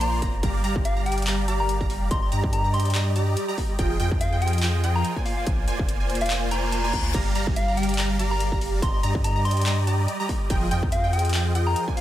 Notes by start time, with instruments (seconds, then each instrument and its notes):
Already playing: sub bass A#1, supersaw synth A#3 F4 C5 D5 C6, synth pluck C6
0.01 soft synth lead A#5, closed hi-hat
0.22 sub bass F1, supersaw synth A#3 C5, synth pluck A#5, kick, closed hi-hat
0.43 sub bass G1, supersaw synth G3 G4 D5 F5 A#5, synth pluck A#5, kick, closed hi-hat
0.64 supersaw synth G3 G4 D5 F5 A#5, synth pluck A#5, closed hi-hat
0.76 kick
0.85 soft synth lead F5, closed hi-hat
0.97 supersaw synth G3 G4 D5 F5 A#5, synth pluck A#5
1.06 soft synth lead G5, closed hi-hat
1.12 closed hi-hat
1.18 closed hi-hat
1.22 closed hi-hat
1.27 supersaw synth G3 G4 D5 F5 A#5, synth pluck A#5, clap, closed hi-hat
1.48 supersaw synth G3 G4 D5 F5 A#5, synth pluck A#5, closed hi-hat
1.60 soft synth lead A#5
1.69 closed hi-hat
1.81 supersaw synth G3 G4 D5 F5 A#5, synth pluck A#5, kick
1.90 sub bass F1, open hi-hat
2.11 sub bass G1, supersaw synth G3 G4 D5 D#5, synth pluck A#5, soft synth lead C6, kick, closed hi-hat
2.22 soft synth lead C6
2.32 sub bass G2, supersaw synth G3 G4 D5 D#5 A#5, synth pluck A#5, closed hi-hat
2.44 kick
2.53 soft synth lead A#5, closed hi-hat
2.64 supersaw synth G3 G4 D5 D#5 A#5, synth pluck A#5
2.74 soft synth lead C6, closed hi-hat
2.80 closed hi-hat
2.85 closed hi-hat
2.90 closed hi-hat
2.95 supersaw synth G3 G4 D5 D#5 A#5, synth pluck A#5, clap, closed hi-hat
3.16 supersaw synth G3 G4 D5 D#5 A#5, synth pluck A#5, closed hi-hat
3.37 closed hi-hat
3.48 supersaw synth G3 G4 D5 D#5 A#5, synth pluck A#5
3.58 kick, open hi-hat
3.79 sub bass F1, supersaw synth F3 F4 G#4 D#5 G5, synth pluck G5, kick, closed hi-hat
4.00 sub bass F2, supersaw synth F3 F4 G#4 D#5 G5, synth pluck G5, closed hi-hat
4.11 kick
4.21 soft synth lead F5, closed hi-hat
4.32 supersaw synth F3 F4 G#4 D#5 G5, synth pluck G5
4.42 soft synth lead G5, closed hi-hat
4.48 closed hi-hat
4.53 closed hi-hat
4.58 closed hi-hat
4.63 supersaw synth F3 F4 G#4 D#5 G5, synth pluck G5, clap, closed hi-hat
4.84 supersaw synth F3 F4 G#4 D#5 G5, synth pluck G5, closed hi-hat
4.95 soft synth lead A#5
5.05 closed hi-hat
5.16 supersaw synth A#3 F4 C5 D5 G#5, synth pluck G#5, kick
5.25 soft synth lead F5, open hi-hat
5.37 soft synth lead F5
5.47 sub bass A#1, supersaw synth A#3 F4 C5 D5 G#5, synth pluck G#5, kick, closed hi-hat
5.68 sub bass F1, supersaw synth A#3 F4 C5 D5 G#5, synth pluck G#5, closed hi-hat
5.79 kick
5.89 closed hi-hat
6.00 supersaw synth A#3 F4 C5 D5 G#5, synth pluck G#5
6.10 closed hi-hat
6.15 closed hi-hat
6.21 soft synth lead F5, closed hi-hat
6.26 closed hi-hat
6.30 supersaw synth A#3 F4 C5 D5 G#5, synth pluck G#5, clap, closed hi-hat, reverse cymbal
6.51 supersaw synth A#3 F4 C5 D5 G#5, synth pluck G#5, soft synth lead A#5, closed hi-hat
6.72 soft synth lead A#5, closed hi-hat
6.84 supersaw synth A#3 F4 C5 D5 G#5, synth pluck G#5
6.93 sub bass D2, kick, open hi-hat
7.14 sub bass G1, supersaw synth G3 G4 D5 F5 A#5, synth pluck A#5, kick, closed hi-hat, crash
7.35 supersaw synth G3 G4 D5 F5 A#5, synth pluck A#5, closed hi-hat
7.47 kick
7.56 soft synth lead F5, closed hi-hat
7.68 supersaw synth G3 G4 D5 F5 A#5, synth pluck A#5
7.77 soft synth lead G5, closed hi-hat
7.83 closed hi-hat
7.89 closed hi-hat
7.94 closed hi-hat
7.98 supersaw synth G3 G4 D5 F5 A#5, synth pluck A#5, clap, closed hi-hat
8.19 supersaw synth G3 G4 D5 F5 A#5, synth pluck A#5, closed hi-hat
8.31 soft synth lead A#5
8.40 closed hi-hat
8.52 supersaw synth G3 G4 D5 F5 A#5, synth pluck A#5, kick
8.61 sub bass F1, open hi-hat
8.82 sub bass G1, supersaw synth G3 G4 D5 D#5 A#5, synth pluck A#5, soft synth lead C6, kick, closed hi-hat
8.94 soft synth lead C6
9.03 sub bass G2, supersaw synth G3 G4 D5 D#5 A#5, synth pluck A#5, closed hi-hat
9.15 kick
9.24 soft synth lead A#5, closed hi-hat
9.36 supersaw synth G3 G4 D5 D#5 A#5, synth pluck A#5
9.45 soft synth lead C6, closed hi-hat
9.51 closed hi-hat
9.57 closed hi-hat
9.61 closed hi-hat
9.66 supersaw synth G3 G4 D5 D#5 A#5, synth pluck A#5, clap, closed hi-hat
9.87 supersaw synth G3 G4 D5 D#5 A#5, synth pluck A#5, closed hi-hat
10.08 closed hi-hat
10.20 supersaw synth G3 G4 D5 D#5 A#5, synth pluck A#5
10.29 kick, open hi-hat
10.50 sub bass F1, supersaw synth F3 F4 G#4 D#5 G5, synth pluck G5, kick, closed hi-hat
10.71 sub bass F2, supersaw synth F3 F4 G#4 D#5 G5, synth pluck G5, closed hi-hat
10.83 kick
10.92 soft synth lead F5, closed hi-hat
11.04 supersaw synth F3 F4 G#4 D#5 G5, synth pluck G5
11.13 soft synth lead G5, closed hi-hat
11.19 closed hi-hat
11.25 closed hi-hat
11.29 closed hi-hat
11.34 supersaw synth F3 F4 G#4 D#5 G5, synth pluck G5, clap, closed hi-hat
11.55 supersaw synth F3 F4 G#4 D#5 G5, synth pluck G5, closed hi-hat
11.67 soft synth lead A#5
11.76 closed hi-hat
11.88 supersaw synth A#3 F4 C5 D5 G#5, synth pluck G#5, kick
11.97 soft synth lead F5, open hi-hat